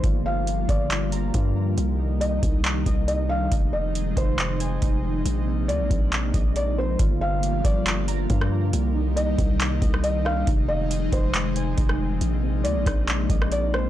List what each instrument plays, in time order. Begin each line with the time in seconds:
Already playing: analog synth pad F3 A#3
0.04 808-style bass G1, analog synth pad D3 G3 F4, synth keys F4, kick, closed hi-hat
0.26 felt piano F5
0.47 closed hi-hat
0.69 808-style bass G1, synth keys F4, felt piano D5, kick, closed hi-hat
0.91 clap, closed hi-hat
1.12 synth keys A#5, closed hi-hat
1.34 808-style bass G2, synth keys F4, kick, closed hi-hat
1.78 808-style bass C2, analog synth pad C3 D#3 D#4, closed hi-hat
1.99 synth keys D#4
2.21 felt piano D#5, closed hi-hat
2.43 808-style bass C2, kick, closed hi-hat
2.65 clap, closed hi-hat
2.86 808-style bass C2, synth keys D#5, kick, closed hi-hat
3.08 felt piano D#5, closed hi-hat
3.29 synth keys D4, felt piano F5
3.52 808-style bass F1, analog synth pad C3 F3 G#3 D#4, synth keys D#4, kick, closed hi-hat
3.73 felt piano D#5
3.95 closed hi-hat
4.17 808-style bass F1, synth keys D#4, felt piano C5, kick, closed hi-hat
4.39 clap, closed hi-hat
4.60 synth keys G#5, closed hi-hat
4.81 808-style bass F1, synth keys D#4, kick, closed hi-hat
5.26 808-style bass A#1, analog synth pad F3 A#3, closed hi-hat
5.47 synth keys C4
5.68 808-style bass D2, felt piano D5, closed hi-hat
5.80 808-style bass A#1
5.91 808-style bass A#1, kick, closed hi-hat
6.13 clap, closed hi-hat
6.34 808-style bass A#1, synth keys D#5, kick, closed hi-hat
6.56 felt piano D5, closed hi-hat
6.78 synth keys C4, felt piano C5
6.99 808-style bass G1, analog synth pad D3 F3 G3 A#3 F4, synth keys F4, kick, closed hi-hat
7.21 felt piano F5
7.43 closed hi-hat
7.64 808-style bass G1, synth keys F4, felt piano D5, kick, closed hi-hat
7.86 clap, closed hi-hat
8.08 synth keys A#5, closed hi-hat
8.30 808-style bass G2, synth keys F4, kick, closed hi-hat
8.41 cross-stick
8.73 808-style bass C2, analog synth pad C3 D#3 G3 D#4, closed hi-hat
8.95 synth keys D#4
9.16 felt piano D#5, closed hi-hat
9.38 808-style bass C2, kick, closed hi-hat
9.60 clap, closed hi-hat
9.82 808-style bass C2, synth keys D#5, kick, closed hi-hat
9.94 cross-stick
10.04 felt piano D#5, closed hi-hat
10.25 synth keys D4, felt piano F5, cross-stick
10.47 808-style bass F1, analog synth pad C3 F3 G#3 D#4, synth keys D#4, kick, closed hi-hat
10.68 felt piano D#5
10.91 closed hi-hat
11.12 808-style bass F1, synth keys D#4, felt piano C5, kick, closed hi-hat
11.34 clap, closed hi-hat
11.56 synth keys G#5, closed hi-hat
11.77 808-style bass F1, synth keys D#4, kick, closed hi-hat
11.89 cross-stick
12.21 808-style bass A#1, analog synth pad G#3 A#3 D#4, closed hi-hat
12.43 synth keys C4
12.64 808-style bass D2, felt piano D5, closed hi-hat
12.76 808-style bass A#1
12.86 808-style bass A#1, kick, cross-stick, closed hi-hat
13.08 clap, closed hi-hat
13.30 808-style bass A#1, synth keys D#5, kick, closed hi-hat
13.42 cross-stick
13.52 felt piano D5, closed hi-hat
13.73 synth keys C4, felt piano C5, cross-stick